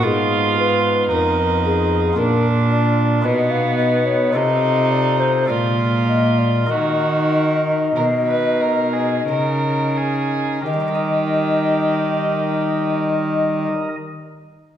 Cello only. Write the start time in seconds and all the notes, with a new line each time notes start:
0.04 G#2
1.10 F2
2.18 A#2
3.26 B2
4.36 C3
5.51 A#2
6.71 D#3
7.97 B2
9.29 C#3
10.67 D#3